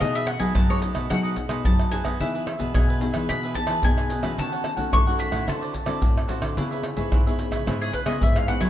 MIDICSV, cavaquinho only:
0, 0, Header, 1, 3, 480
1, 0, Start_track
1, 0, Key_signature, 4, "major"
1, 0, Tempo, 547445
1, 8, Time_signature, 4, 2, 24, 8
1, 7626, End_track
2, 0, Start_track
2, 0, Title_t, "Cavaquinho"
2, 0, Program_c, 0, 24
2, 9, Note_on_c, 0, 63, 47
2, 13, Note_on_c, 0, 69, 53
2, 17, Note_on_c, 0, 71, 53
2, 22, Note_on_c, 0, 75, 62
2, 119, Note_off_c, 0, 63, 0
2, 121, Note_off_c, 0, 69, 0
2, 121, Note_off_c, 0, 75, 0
2, 123, Note_off_c, 0, 71, 0
2, 132, Note_on_c, 0, 75, 62
2, 139, Note_on_c, 0, 71, 57
2, 146, Note_on_c, 0, 69, 52
2, 228, Note_off_c, 0, 69, 0
2, 233, Note_off_c, 0, 75, 0
2, 234, Note_off_c, 0, 71, 0
2, 346, Note_on_c, 0, 75, 67
2, 353, Note_on_c, 0, 71, 60
2, 361, Note_on_c, 0, 69, 54
2, 468, Note_off_c, 0, 75, 0
2, 471, Note_off_c, 0, 71, 0
2, 475, Note_off_c, 0, 69, 0
2, 485, Note_on_c, 0, 63, 50
2, 490, Note_on_c, 0, 69, 51
2, 496, Note_on_c, 0, 71, 53
2, 502, Note_on_c, 0, 75, 54
2, 596, Note_off_c, 0, 75, 0
2, 597, Note_off_c, 0, 63, 0
2, 599, Note_off_c, 0, 69, 0
2, 602, Note_off_c, 0, 71, 0
2, 606, Note_on_c, 0, 75, 69
2, 615, Note_on_c, 0, 71, 59
2, 620, Note_on_c, 0, 69, 49
2, 808, Note_off_c, 0, 75, 0
2, 816, Note_off_c, 0, 71, 0
2, 818, Note_on_c, 0, 75, 64
2, 821, Note_off_c, 0, 69, 0
2, 826, Note_on_c, 0, 71, 57
2, 832, Note_on_c, 0, 69, 57
2, 944, Note_off_c, 0, 75, 0
2, 948, Note_off_c, 0, 71, 0
2, 950, Note_off_c, 0, 69, 0
2, 956, Note_on_c, 0, 63, 47
2, 960, Note_on_c, 0, 69, 54
2, 966, Note_on_c, 0, 71, 59
2, 972, Note_on_c, 0, 75, 55
2, 1069, Note_off_c, 0, 75, 0
2, 1073, Note_off_c, 0, 63, 0
2, 1075, Note_off_c, 0, 69, 0
2, 1078, Note_off_c, 0, 71, 0
2, 1080, Note_on_c, 0, 75, 69
2, 1088, Note_on_c, 0, 71, 63
2, 1098, Note_on_c, 0, 69, 60
2, 1188, Note_off_c, 0, 69, 0
2, 1192, Note_off_c, 0, 75, 0
2, 1193, Note_off_c, 0, 71, 0
2, 1305, Note_on_c, 0, 75, 68
2, 1314, Note_on_c, 0, 71, 60
2, 1318, Note_on_c, 0, 69, 52
2, 1667, Note_off_c, 0, 75, 0
2, 1671, Note_off_c, 0, 71, 0
2, 1674, Note_off_c, 0, 69, 0
2, 1677, Note_on_c, 0, 63, 47
2, 1682, Note_on_c, 0, 69, 53
2, 1687, Note_on_c, 0, 71, 57
2, 1691, Note_on_c, 0, 75, 55
2, 1778, Note_off_c, 0, 75, 0
2, 1786, Note_off_c, 0, 71, 0
2, 1789, Note_on_c, 0, 75, 74
2, 1792, Note_off_c, 0, 69, 0
2, 1793, Note_off_c, 0, 63, 0
2, 1796, Note_on_c, 0, 71, 59
2, 1802, Note_on_c, 0, 69, 56
2, 1909, Note_off_c, 0, 75, 0
2, 1913, Note_off_c, 0, 71, 0
2, 1916, Note_off_c, 0, 69, 0
2, 1923, Note_on_c, 0, 63, 51
2, 1931, Note_on_c, 0, 68, 55
2, 1933, Note_on_c, 0, 71, 47
2, 1938, Note_on_c, 0, 76, 58
2, 2036, Note_off_c, 0, 63, 0
2, 2039, Note_off_c, 0, 76, 0
2, 2040, Note_off_c, 0, 68, 0
2, 2041, Note_off_c, 0, 71, 0
2, 2050, Note_on_c, 0, 76, 61
2, 2061, Note_on_c, 0, 71, 56
2, 2063, Note_on_c, 0, 68, 46
2, 2151, Note_off_c, 0, 71, 0
2, 2152, Note_off_c, 0, 68, 0
2, 2156, Note_off_c, 0, 76, 0
2, 2262, Note_on_c, 0, 76, 66
2, 2270, Note_on_c, 0, 71, 61
2, 2277, Note_on_c, 0, 68, 60
2, 2385, Note_off_c, 0, 76, 0
2, 2390, Note_off_c, 0, 71, 0
2, 2393, Note_off_c, 0, 68, 0
2, 2405, Note_on_c, 0, 63, 54
2, 2410, Note_on_c, 0, 68, 52
2, 2416, Note_on_c, 0, 71, 54
2, 2418, Note_on_c, 0, 76, 62
2, 2517, Note_off_c, 0, 63, 0
2, 2520, Note_off_c, 0, 68, 0
2, 2520, Note_off_c, 0, 76, 0
2, 2522, Note_off_c, 0, 71, 0
2, 2531, Note_on_c, 0, 76, 67
2, 2539, Note_on_c, 0, 71, 61
2, 2543, Note_on_c, 0, 68, 52
2, 2728, Note_off_c, 0, 76, 0
2, 2737, Note_off_c, 0, 71, 0
2, 2738, Note_on_c, 0, 76, 63
2, 2741, Note_off_c, 0, 68, 0
2, 2747, Note_on_c, 0, 71, 62
2, 2752, Note_on_c, 0, 68, 51
2, 2863, Note_off_c, 0, 76, 0
2, 2868, Note_off_c, 0, 71, 0
2, 2870, Note_off_c, 0, 68, 0
2, 2889, Note_on_c, 0, 63, 51
2, 2892, Note_on_c, 0, 68, 47
2, 2900, Note_on_c, 0, 71, 47
2, 2904, Note_on_c, 0, 76, 51
2, 2999, Note_off_c, 0, 63, 0
2, 3000, Note_off_c, 0, 68, 0
2, 3002, Note_off_c, 0, 76, 0
2, 3004, Note_off_c, 0, 71, 0
2, 3012, Note_on_c, 0, 76, 75
2, 3020, Note_on_c, 0, 71, 68
2, 3026, Note_on_c, 0, 68, 64
2, 3116, Note_off_c, 0, 68, 0
2, 3119, Note_off_c, 0, 71, 0
2, 3120, Note_off_c, 0, 76, 0
2, 3230, Note_on_c, 0, 76, 69
2, 3238, Note_on_c, 0, 71, 64
2, 3245, Note_on_c, 0, 68, 60
2, 3585, Note_off_c, 0, 68, 0
2, 3589, Note_off_c, 0, 76, 0
2, 3592, Note_on_c, 0, 63, 54
2, 3593, Note_off_c, 0, 71, 0
2, 3596, Note_on_c, 0, 68, 49
2, 3602, Note_on_c, 0, 71, 60
2, 3609, Note_on_c, 0, 76, 49
2, 3694, Note_off_c, 0, 76, 0
2, 3703, Note_off_c, 0, 71, 0
2, 3704, Note_on_c, 0, 76, 67
2, 3710, Note_off_c, 0, 63, 0
2, 3712, Note_off_c, 0, 68, 0
2, 3713, Note_on_c, 0, 71, 64
2, 3723, Note_on_c, 0, 68, 60
2, 3826, Note_off_c, 0, 76, 0
2, 3831, Note_off_c, 0, 71, 0
2, 3836, Note_off_c, 0, 68, 0
2, 3842, Note_on_c, 0, 63, 54
2, 3846, Note_on_c, 0, 69, 51
2, 3854, Note_on_c, 0, 73, 53
2, 3856, Note_on_c, 0, 78, 57
2, 3954, Note_off_c, 0, 78, 0
2, 3955, Note_off_c, 0, 63, 0
2, 3957, Note_off_c, 0, 69, 0
2, 3961, Note_off_c, 0, 73, 0
2, 3964, Note_on_c, 0, 78, 56
2, 3971, Note_on_c, 0, 73, 64
2, 3976, Note_on_c, 0, 69, 57
2, 4063, Note_off_c, 0, 69, 0
2, 4066, Note_off_c, 0, 73, 0
2, 4067, Note_off_c, 0, 78, 0
2, 4179, Note_on_c, 0, 78, 67
2, 4186, Note_on_c, 0, 73, 64
2, 4193, Note_on_c, 0, 69, 55
2, 4303, Note_off_c, 0, 78, 0
2, 4307, Note_off_c, 0, 73, 0
2, 4311, Note_off_c, 0, 69, 0
2, 4317, Note_on_c, 0, 63, 53
2, 4321, Note_on_c, 0, 69, 52
2, 4325, Note_on_c, 0, 73, 58
2, 4331, Note_on_c, 0, 78, 57
2, 4432, Note_off_c, 0, 63, 0
2, 4434, Note_off_c, 0, 69, 0
2, 4434, Note_off_c, 0, 78, 0
2, 4437, Note_off_c, 0, 73, 0
2, 4444, Note_on_c, 0, 78, 78
2, 4453, Note_on_c, 0, 73, 63
2, 4460, Note_on_c, 0, 69, 52
2, 4647, Note_off_c, 0, 78, 0
2, 4657, Note_off_c, 0, 73, 0
2, 4658, Note_on_c, 0, 78, 69
2, 4662, Note_off_c, 0, 69, 0
2, 4667, Note_on_c, 0, 73, 71
2, 4673, Note_on_c, 0, 69, 54
2, 4783, Note_off_c, 0, 78, 0
2, 4788, Note_off_c, 0, 73, 0
2, 4790, Note_off_c, 0, 69, 0
2, 4795, Note_on_c, 0, 66, 47
2, 4803, Note_on_c, 0, 69, 57
2, 4803, Note_on_c, 0, 72, 57
2, 4810, Note_on_c, 0, 74, 61
2, 4910, Note_off_c, 0, 74, 0
2, 4911, Note_off_c, 0, 66, 0
2, 4915, Note_off_c, 0, 69, 0
2, 4915, Note_off_c, 0, 72, 0
2, 4920, Note_on_c, 0, 74, 66
2, 4927, Note_on_c, 0, 72, 63
2, 4935, Note_on_c, 0, 69, 56
2, 5022, Note_off_c, 0, 69, 0
2, 5023, Note_off_c, 0, 72, 0
2, 5026, Note_off_c, 0, 74, 0
2, 5136, Note_on_c, 0, 74, 81
2, 5148, Note_on_c, 0, 72, 67
2, 5152, Note_on_c, 0, 69, 59
2, 5500, Note_off_c, 0, 69, 0
2, 5502, Note_off_c, 0, 74, 0
2, 5506, Note_on_c, 0, 66, 55
2, 5508, Note_off_c, 0, 72, 0
2, 5511, Note_on_c, 0, 69, 53
2, 5517, Note_on_c, 0, 72, 55
2, 5520, Note_on_c, 0, 74, 57
2, 5614, Note_off_c, 0, 74, 0
2, 5624, Note_off_c, 0, 72, 0
2, 5625, Note_on_c, 0, 74, 63
2, 5627, Note_off_c, 0, 66, 0
2, 5627, Note_off_c, 0, 69, 0
2, 5635, Note_on_c, 0, 72, 57
2, 5638, Note_on_c, 0, 69, 59
2, 5746, Note_off_c, 0, 74, 0
2, 5751, Note_off_c, 0, 72, 0
2, 5753, Note_off_c, 0, 69, 0
2, 5757, Note_on_c, 0, 64, 57
2, 5764, Note_on_c, 0, 71, 58
2, 5769, Note_on_c, 0, 73, 58
2, 5771, Note_on_c, 0, 76, 58
2, 5871, Note_off_c, 0, 76, 0
2, 5872, Note_off_c, 0, 64, 0
2, 5876, Note_off_c, 0, 71, 0
2, 5878, Note_off_c, 0, 73, 0
2, 5881, Note_on_c, 0, 76, 61
2, 5893, Note_on_c, 0, 73, 70
2, 5898, Note_on_c, 0, 71, 58
2, 5987, Note_off_c, 0, 71, 0
2, 5991, Note_off_c, 0, 73, 0
2, 5991, Note_off_c, 0, 76, 0
2, 6108, Note_on_c, 0, 76, 77
2, 6112, Note_on_c, 0, 73, 68
2, 6120, Note_on_c, 0, 71, 54
2, 6228, Note_off_c, 0, 76, 0
2, 6230, Note_off_c, 0, 73, 0
2, 6234, Note_off_c, 0, 71, 0
2, 6243, Note_on_c, 0, 64, 54
2, 6251, Note_on_c, 0, 71, 52
2, 6256, Note_on_c, 0, 73, 57
2, 6259, Note_on_c, 0, 76, 54
2, 6355, Note_off_c, 0, 64, 0
2, 6359, Note_off_c, 0, 71, 0
2, 6359, Note_off_c, 0, 76, 0
2, 6362, Note_off_c, 0, 73, 0
2, 6370, Note_on_c, 0, 76, 62
2, 6383, Note_on_c, 0, 73, 64
2, 6386, Note_on_c, 0, 71, 58
2, 6583, Note_off_c, 0, 76, 0
2, 6593, Note_on_c, 0, 76, 69
2, 6595, Note_off_c, 0, 73, 0
2, 6600, Note_off_c, 0, 71, 0
2, 6606, Note_on_c, 0, 73, 74
2, 6610, Note_on_c, 0, 71, 54
2, 6710, Note_off_c, 0, 76, 0
2, 6717, Note_off_c, 0, 73, 0
2, 6719, Note_off_c, 0, 71, 0
2, 6728, Note_on_c, 0, 64, 44
2, 6732, Note_on_c, 0, 71, 52
2, 6738, Note_on_c, 0, 73, 60
2, 6742, Note_on_c, 0, 76, 62
2, 6838, Note_off_c, 0, 64, 0
2, 6840, Note_off_c, 0, 71, 0
2, 6843, Note_off_c, 0, 73, 0
2, 6845, Note_off_c, 0, 76, 0
2, 6857, Note_on_c, 0, 76, 79
2, 6866, Note_on_c, 0, 73, 66
2, 6870, Note_on_c, 0, 71, 57
2, 6955, Note_off_c, 0, 71, 0
2, 6956, Note_off_c, 0, 73, 0
2, 6960, Note_off_c, 0, 76, 0
2, 7066, Note_on_c, 0, 76, 70
2, 7074, Note_on_c, 0, 73, 68
2, 7079, Note_on_c, 0, 71, 60
2, 7427, Note_off_c, 0, 76, 0
2, 7431, Note_off_c, 0, 73, 0
2, 7433, Note_off_c, 0, 71, 0
2, 7437, Note_on_c, 0, 64, 56
2, 7442, Note_on_c, 0, 71, 52
2, 7446, Note_on_c, 0, 73, 50
2, 7450, Note_on_c, 0, 76, 55
2, 7532, Note_off_c, 0, 76, 0
2, 7541, Note_off_c, 0, 73, 0
2, 7543, Note_on_c, 0, 76, 65
2, 7548, Note_off_c, 0, 71, 0
2, 7552, Note_off_c, 0, 64, 0
2, 7552, Note_on_c, 0, 73, 71
2, 7559, Note_on_c, 0, 71, 60
2, 7626, Note_off_c, 0, 71, 0
2, 7626, Note_off_c, 0, 73, 0
2, 7626, Note_off_c, 0, 76, 0
2, 7626, End_track
3, 0, Start_track
3, 0, Title_t, "Muted cavaquinho strokes"
3, 237, Note_on_c, 9, 29, 39
3, 324, Note_off_c, 9, 29, 0
3, 1196, Note_on_c, 9, 29, 37
3, 1283, Note_off_c, 9, 29, 0
3, 2158, Note_on_c, 9, 29, 38
3, 2245, Note_off_c, 9, 29, 0
3, 3124, Note_on_c, 9, 29, 35
3, 3211, Note_off_c, 9, 29, 0
3, 4071, Note_on_c, 9, 29, 43
3, 4159, Note_off_c, 9, 29, 0
3, 5029, Note_on_c, 9, 29, 36
3, 5117, Note_off_c, 9, 29, 0
3, 5993, Note_on_c, 9, 29, 42
3, 6081, Note_off_c, 9, 29, 0
3, 6965, Note_on_c, 9, 29, 44
3, 7053, Note_off_c, 9, 29, 0
3, 7626, End_track
0, 0, End_of_file